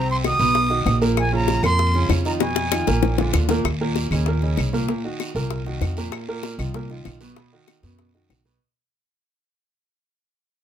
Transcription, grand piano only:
0.00 0.19 C3 medium
0.00 0.19 C4 medium
0.00 0.19 C5 medium
0.24 0.37 D#3 medium
0.24 0.37 D#4 medium
0.24 0.38 F#4 medium
0.40 0.65 B2 medium
0.40 0.65 B3 medium
0.40 0.65 B4 medium
0.70 0.96 D#3 medium
0.70 0.96 D#4 medium
0.70 0.96 F#4 medium
1.01 1.27 A#2 medium
1.01 1.27 A#3 medium
1.01 1.27 A#4 medium
1.33 1.58 C#3 medium
1.33 1.58 C#4 medium
1.33 1.58 F4 medium
1.63 1.89 A#2 medium
1.63 1.89 A#3 medium
1.63 1.89 A#4 medium
1.95 2.20 C#3 medium
1.95 2.20 C#4 medium
1.95 2.20 F4 medium
2.25 2.38 D#3 medium
2.25 2.38 D#4 medium
2.25 2.38 F4 medium
2.40 2.66 B2 medium
2.40 2.66 B3 medium
2.40 2.66 B4 medium
2.72 2.84 D#3 medium
2.72 2.85 D#4 medium
2.72 2.85 F4 medium
2.87 3.13 A#2 medium
2.87 3.13 A#3 medium
2.87 3.13 A#4 medium
3.19 3.44 D3 medium
3.19 3.44 D4 medium
3.19 3.44 F4 medium
3.50 3.62 A#2 medium
3.50 3.62 A#3 medium
3.50 3.63 A#4 medium
3.81 4.06 A#2 medium
3.81 4.06 A#3 medium
3.81 4.06 A#4 medium
4.12 4.24 C#3 medium
4.12 4.25 C#4 medium
4.12 4.25 D#4 medium
4.28 4.40 A#2 medium
4.28 4.40 A#3 medium
4.28 4.40 A#4 medium
4.43 4.68 C#3 medium
4.43 4.68 C#4 medium
4.43 4.68 D#4 medium
4.73 4.86 A#2 medium
4.73 4.86 A#3 medium
4.73 4.86 A#4 medium
4.88 5.01 A#2 medium
4.88 5.02 A#3 medium
4.88 5.02 A#4 medium
5.04 5.30 D#3 medium
5.04 5.30 D#4 medium
5.04 5.30 F#4 medium
5.35 5.60 A#2 medium
5.35 5.60 A#3 medium
5.35 5.61 A#4 medium
5.66 5.92 D#3 medium
5.66 5.92 D#4 medium
5.66 5.92 F#4 medium
5.98 6.23 A#2 medium
5.98 6.23 A#3 medium
5.98 6.23 A#4 medium
6.28 6.54 A#2 medium
6.28 6.54 A#3 medium
6.28 6.54 A#4 medium
6.59 6.71 D#3 medium
6.59 6.71 D#4 medium
6.59 6.72 F4 medium
6.75 6.87 A#2 medium
6.75 6.87 A#3 medium
6.75 6.88 A#4 medium
6.90 7.16 D#3 medium
6.90 7.16 D#4 medium
6.90 7.16 F4 medium
7.21 7.34 B2 medium
7.21 7.34 B3 medium
7.21 7.34 B4 medium
7.37 7.49 B2 medium
7.37 7.50 B3 medium
7.37 7.50 B4 medium
7.53 7.78 D#3 medium
7.53 7.78 D#4 medium
7.53 7.78 F#4 medium
7.84 8.09 B2 medium
7.84 8.09 B3 medium
7.84 8.09 B4 medium
8.15 8.40 D#3 medium
8.15 8.40 D#4 medium
8.15 8.40 F#4 medium
8.45 8.58 B2 medium
8.45 8.58 B3 medium
8.45 8.58 B4 medium

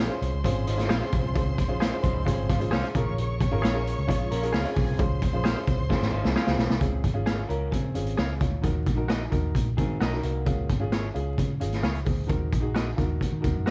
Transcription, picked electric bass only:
0.22 0.32 C2 loud
0.34 0.43 C#2 medium
0.45 0.65 G#1 loud
0.68 0.87 G#1 loud
0.91 1.01 A#1 loud
1.13 1.23 B1 medium
1.25 1.34 C2 medium
1.36 1.71 C#2 loud
1.71 1.90 A#1 medium
2.04 2.14 C2 loud
2.17 2.26 C#2 loud
2.27 2.46 G#1 medium
2.49 2.69 G#1 medium
2.73 2.82 C2 medium
2.96 3.05 A#1 loud
3.08 3.17 A1 medium
3.19 3.48 A#1 loud
3.53 3.62 G#1 medium
3.65 3.94 A#1 loud
3.99 4.09 C#2 medium
4.09 4.28 A#1 medium
4.31 4.51 A#1 medium
4.54 4.64 C#2 medium
4.77 4.87 B1 loud
4.89 4.98 C2 medium
4.99 5.29 C#2 loud
5.34 5.54 A#1 medium
5.67 5.77 C2 medium
5.80 5.89 C#2 medium
6.01 6.11 G#1 medium
6.13 6.23 G#1 medium
6.25 6.35 C2 medium
6.47 6.57 C#2 medium
6.58 6.68 B1 medium
6.70 6.80 C2 medium
6.81 7.01 C#2 loud
7.04 7.44 G#1 medium
7.49 7.69 C#2 medium
7.72 7.97 C#3 medium
7.95 8.15 G#1 medium
8.18 8.38 C#2 medium
8.41 8.61 D2 medium
8.63 8.84 D#2 medium
8.87 9.27 A#1 medium
9.32 9.52 D#2 medium
9.55 9.75 A#1 medium
9.78 9.98 D#3 medium
10.01 10.21 B1 medium
10.23 10.43 C2 medium
10.46 10.66 C#2 loud
10.69 11.09 G#1 medium
11.15 11.35 C#2 medium
11.38 11.62 C#3 medium
11.61 11.81 G#1 medium
11.83 12.03 C#2 medium
12.07 12.27 D2 medium
12.29 12.49 D#2 medium
12.53 12.92 A#1 loud
12.98 13.18 D#2 medium
13.32 13.42 D#3 medium
13.45 13.54 D#2 medium
13.56 13.65 F#2 medium

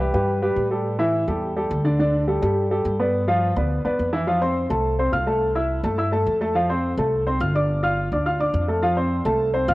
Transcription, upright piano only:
0.00 0.12 G3 medium
0.00 0.12 G4 medium
0.00 0.12 B4 medium
0.14 0.37 G3 medium
0.14 0.37 G4 medium
0.14 0.38 B4 medium
0.42 0.66 G3 medium
0.42 0.66 G4 medium
0.42 0.66 B4 medium
0.71 0.94 G3 medium
0.71 0.94 G4 medium
0.71 0.94 A4 medium
0.99 1.22 E3 medium
0.99 1.23 E4 medium
0.99 1.23 E5 medium
1.27 1.51 G3 medium
1.27 1.51 G4 medium
1.27 1.51 A4 medium
1.56 1.80 G3 medium
1.56 1.80 G4 medium
1.56 1.80 A4 medium
1.84 1.96 D3 medium
1.84 1.97 D4 medium
1.84 1.97 D5 medium
1.99 2.23 D3 medium
1.99 2.23 D4 medium
1.99 2.23 D5 medium
2.27 2.39 G3 medium
2.27 2.39 G4 medium
2.27 2.40 A4 medium
2.42 2.65 G3 medium
2.42 2.65 G4 medium
2.42 2.66 A4 medium
2.71 2.94 G3 medium
2.71 2.94 G4 medium
2.71 2.94 A4 medium
2.99 3.23 B3 medium
2.99 3.23 B4 medium
2.99 3.23 D5 medium
3.28 3.51 F3 medium
3.28 3.51 F4 medium
3.28 3.51 F5 medium
3.57 3.80 B3 medium
3.57 3.80 B4 medium
3.57 3.80 D5 medium
3.85 4.08 B3 medium
3.85 4.08 B4 medium
3.85 4.08 D5 medium
4.13 4.25 E3 medium
4.13 4.25 E4 medium
4.13 4.25 E5 medium
4.27 4.39 F3 medium
4.27 4.39 F4 medium
4.27 4.39 F5 medium
4.41 4.65 C4 medium
4.41 4.65 C5 medium
4.41 4.65 C6 medium
4.70 4.93 A3 medium
4.70 4.94 A4 medium
4.70 4.94 A5 medium
4.99 5.10 C4 medium
4.99 5.11 C5 medium
4.99 5.11 C6 medium
5.12 5.24 F4 medium
5.12 5.24 F5 medium
5.12 5.25 F6 medium
5.27 5.50 A3 medium
5.27 5.51 A4 medium
5.27 5.51 A5 medium
5.55 5.79 E4 medium
5.55 5.79 E5 medium
5.55 5.79 E6 medium
5.84 5.96 A3 medium
5.84 5.96 A4 medium
5.84 5.96 A5 medium
5.98 6.10 E4 medium
5.98 6.10 E5 medium
5.98 6.10 E6 medium
6.12 6.36 A3 medium
6.12 6.36 A4 medium
6.12 6.36 A5 medium
6.41 6.53 A3 medium
6.41 6.53 A4 medium
6.41 6.53 A5 medium
6.55 6.67 F3 medium
6.55 6.67 F4 medium
6.55 6.67 F5 medium
6.69 6.93 C4 medium
6.69 6.93 C5 medium
6.69 6.93 C6 medium
6.98 7.22 A3 medium
6.98 7.22 A4 medium
6.98 7.22 A5 medium
7.27 7.38 C4 medium
7.27 7.38 C5 medium
7.27 7.39 C6 medium
7.41 7.52 F4 medium
7.41 7.52 F5 medium
7.41 7.53 F6 medium
7.55 7.78 D4 medium
7.55 7.78 D5 medium
7.55 7.79 D6 medium
7.83 8.06 F4 medium
7.83 8.07 F5 medium
7.83 8.07 F6 medium
8.12 8.24 D4 medium
8.12 8.24 D5 medium
8.12 8.24 D6 medium
8.26 8.38 F4 medium
8.26 8.38 F5 medium
8.26 8.38 F6 medium
8.39 8.63 D4 medium
8.39 8.63 D5 medium
8.39 8.64 D6 medium
8.68 8.80 A3 medium
8.68 8.80 A4 medium
8.68 8.80 A5 medium
8.82 8.94 F3 medium
8.82 8.94 F4 medium
8.82 8.95 F5 medium
8.96 9.20 C4 medium
8.96 9.20 C5 medium
8.96 9.20 C6 medium
9.25 9.49 A3 medium
9.25 9.49 A4 medium
9.25 9.49 A5 medium
9.54 9.65 C4 medium
9.54 9.66 C5 medium
9.54 9.66 C6 medium
9.68 9.74 F4 medium
9.68 9.74 F5 medium
9.68 9.74 F6 medium

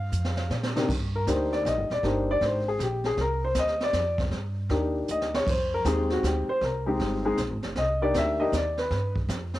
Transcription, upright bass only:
0.00 0.11 G2 medium
0.12 0.49 F2 medium
0.50 0.87 A#2 medium
0.88 1.26 G2 medium
1.27 1.64 D2 medium
1.65 1.77 A#1 medium
1.77 1.89 G1 medium
1.90 2.02 D#1 medium
2.03 2.40 G1 medium
2.41 2.78 G#1 medium
2.79 3.16 A#1 medium
3.17 3.54 C2 medium
3.55 3.92 D2 medium
3.93 4.31 F2 medium
4.31 4.69 G2 medium
4.70 5.07 D#2 medium
5.09 5.46 D2 medium
5.46 5.84 F2 medium
5.85 6.22 D#2 medium
6.23 6.46 D2 medium
6.48 muted upright bass stroke soft
6.61 6.99 C2 medium
6.99 7.37 G1 medium
7.37 7.51 A#1 medium
7.51 7.63 G#1 medium
7.64 7.75 F1 medium
7.76 8.13 C2 medium
8.14 8.52 D2 medium
8.52 8.90 D#2 medium
8.91 9.28 G2 medium
9.28 9.59 F2 medium

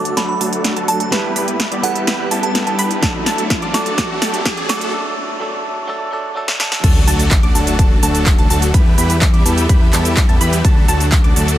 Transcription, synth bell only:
0.17 0.25 B5 medium
0.29 0.36 B5 medium
0.88 0.96 A5 medium
1.00 1.08 A5 medium
1.83 1.99 F#5 medium
2.43 2.91 A5 medium
3.74 3.90 D6 medium
4.70 4.85 D6 medium

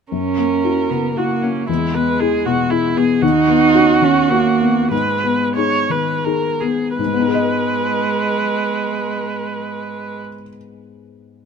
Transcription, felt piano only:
0.12 1.64 F#2 soft
0.37 0.80 A#3 soft
0.64 0.88 E4 soft
0.64 0.88 F#4 soft
0.90 1.32 C#3 soft
1.17 1.40 E4 soft
1.17 1.40 F#4 soft
1.43 1.69 A#3 soft
1.69 3.19 E2 soft
1.94 2.35 B3 soft
2.20 2.43 E4 soft
2.20 2.43 G#4 soft
2.45 2.86 B2 soft
2.70 2.93 E4 soft
2.70 2.94 G#4 soft
2.96 3.22 B3 soft
3.22 4.87 D#2 medium
3.48 3.92 B3 medium
3.74 3.99 C#4 medium
3.74 4.00 F#4 medium
4.02 4.48 D#3 soft
4.31 4.57 C#4 soft
4.31 4.58 F#4 soft
4.61 4.91 B3 soft
4.91 6.94 G#2 soft
5.23 5.76 B3 soft
5.57 5.87 D#4 soft
5.57 5.87 G#4 soft
5.90 6.46 D#3 soft
6.25 6.57 D#4 soft
6.25 6.58 G#4 soft
6.61 6.98 B3 soft
6.99 10.20 G#2 soft
7.06 10.28 G#3 soft
7.13 10.35 B3 soft
7.20 10.41 D#4 soft
7.27 10.48 G#4 soft
7.34 10.56 D#5 soft

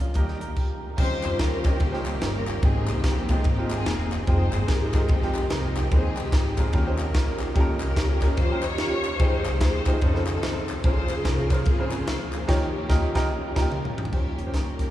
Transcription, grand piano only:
0.15 0.54 D#3 medium
0.15 0.51 A#3 medium
0.15 0.51 D#4 medium
0.15 0.51 G4 medium
0.15 0.51 A#4 medium
0.97 1.61 D#3 medium
0.97 1.37 C4 medium
0.97 1.37 C#4 medium
0.97 1.37 D#4 medium
0.97 1.37 F4 medium
0.97 1.37 G4 medium
1.64 1.79 C4 medium
1.64 1.79 C#4 medium
1.64 1.79 D#4 medium
1.64 1.80 F4 medium
1.64 1.80 G4 medium
1.92 2.38 C#4 medium
1.92 2.39 D#4 medium
1.92 2.39 F4 medium
1.92 2.39 G4 medium
1.92 2.38 C5 medium
2.62 3.26 G#2 medium
2.62 3.01 G#3 medium
2.62 3.02 A#3 medium
2.62 3.02 C4 medium
2.62 3.02 D#4 medium
2.62 3.02 G4 medium
3.30 3.44 G#3 medium
3.30 3.44 A#3 medium
3.30 3.44 C4 medium
3.30 3.44 D#4 medium
3.30 3.45 G4 medium
3.58 4.03 G#3 medium
3.58 4.03 A#3 medium
3.58 4.03 C4 medium
3.58 4.04 D#4 medium
3.58 4.04 F4 medium
4.27 4.66 G#3 medium
4.27 4.66 C4 medium
4.27 4.66 D#4 medium
4.27 4.66 F4 medium
4.27 4.67 G5 medium
4.94 5.08 G#3 medium
4.94 5.08 C4 medium
4.94 5.08 D#4 medium
4.94 5.09 F4 medium
4.94 5.09 G#4 medium
5.22 5.67 G#3 medium
5.22 5.67 C4 medium
5.22 5.68 D#4 medium
5.22 5.68 F4 medium
5.22 5.68 G4 medium
5.92 6.54 D#3 medium
5.92 6.30 G#3 medium
5.92 6.30 C4 medium
5.92 6.31 D#4 medium
5.92 6.31 G#4 medium
5.92 5.98 B4 medium
5.98 6.33 C5 medium
6.59 6.73 G#3 medium
6.59 6.73 C4 medium
6.59 6.72 D#4 medium
6.59 6.73 G#4 medium
6.59 6.73 A#4 medium
6.73 7.36 D#3 medium
6.73 6.83 C#4 medium
6.73 6.84 D#4 medium
6.73 6.84 F4 medium
6.73 6.84 G4 medium
6.73 6.84 A#4 medium
6.86 7.31 C#4 medium
6.86 7.31 D#4 medium
6.86 7.32 F4 medium
6.86 7.32 G4 medium
6.86 7.32 C5 medium
7.54 7.94 C#4 medium
7.54 7.94 D#4 medium
7.54 7.94 F4 medium
7.54 7.94 G4 medium
7.54 7.62 A4 medium
7.60 7.97 A#4 loud
8.22 8.36 C#4 medium
8.22 8.36 D#4 medium
8.22 8.37 F4 medium
8.22 8.37 G4 medium
8.22 8.37 C#5 medium
8.38 9.01 D#3 medium
8.50 8.96 C#4 medium
8.50 8.96 D#4 medium
8.50 8.96 F4 medium
8.50 8.96 G4 medium
8.50 8.96 A#4 medium
9.20 9.59 D#4 medium
9.20 9.59 F4 medium
9.20 9.59 G#4 medium
9.20 9.59 A#4 medium
9.20 9.59 G5 medium
9.87 10.01 D#4 medium
9.87 10.01 F4 medium
9.87 10.01 G4 medium
9.87 10.01 G#4 medium
9.87 10.01 C5 medium
10.02 10.12 C#4 medium
10.02 10.12 D#4 medium
10.02 10.12 F4 medium
10.02 10.13 A4 medium
10.02 10.13 C5 medium
10.14 10.60 C#3 medium
10.14 10.60 D#4 medium
10.14 10.60 F4 medium
10.14 10.61 A4 medium
10.14 10.61 C5 medium
10.84 11.47 A#2 medium
10.84 11.23 C#4 medium
10.84 11.23 F4 medium
10.84 11.23 G#4 medium
10.84 11.23 A#4 medium
10.84 11.23 C5 medium
11.51 11.65 C#4 medium
11.51 11.65 F4 medium
11.51 11.65 G#4 medium
11.51 11.66 A#4 medium
11.51 11.66 C5 medium
11.79 12.24 C#3 medium
11.79 12.24 F4 medium
11.79 12.24 G#4 medium
11.79 12.25 A#4 medium
11.79 12.25 C5 medium
12.47 12.65 D#3 loud
12.47 12.65 D#4 loud
12.47 12.65 F4 loud
12.47 12.66 G4 loud
12.47 12.66 A#4 loud
12.47 12.66 C#5 loud
12.89 13.06 D#4 medium
12.89 13.07 F4 loud
12.89 13.07 G4 loud
12.89 13.07 A#4 loud
12.89 13.07 D#5 medium
13.15 13.25 D#4 loud
13.15 13.25 F4 loud
13.15 13.26 G4 loud
13.15 13.26 A#4 loud
13.15 13.26 D#5 loud
13.55 13.66 D#4 loud
13.55 13.66 F4 medium
13.55 13.67 A#4 loud
13.61 13.69 G4 loud
14.12 14.76 D#3 soft
14.12 14.36 C#4 medium
14.12 14.36 F4 medium
14.12 14.37 G4 medium
14.12 14.37 C5 medium
14.45 14.80 C#4 medium
14.45 14.80 F4 medium
14.45 14.80 G4 medium
14.45 14.80 C5 medium

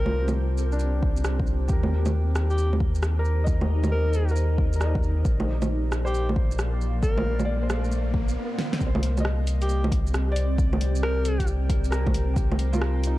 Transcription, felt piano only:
0.00 0.72 D4 medium
0.00 0.06 F4 medium
0.00 1.68 G4 medium
0.06 1.63 F4 soft
0.11 1.65 A#4 medium
0.72 1.88 D4 medium
1.68 1.90 G4 medium
1.73 1.93 A#4 medium
3.19 4.30 A#4 medium
3.44 4.84 D#5 medium
4.31 4.74 A#4 medium
4.76 5.43 A#4 medium
4.81 5.46 D5 medium
4.86 5.48 D#5 medium
6.05 7.61 C5 medium
7.45 8.33 D5 medium
7.63 8.32 C5 medium
8.87 10.47 C5 medium
9.20 10.77 D#5 medium
10.32 11.88 D5 medium
11.42 12.32 G4 medium
11.91 12.76 A#4 medium
12.33 13.18 G4 medium
12.73 13.18 F4 medium
12.78 13.18 A#4 medium
13.07 13.18 D#4 medium

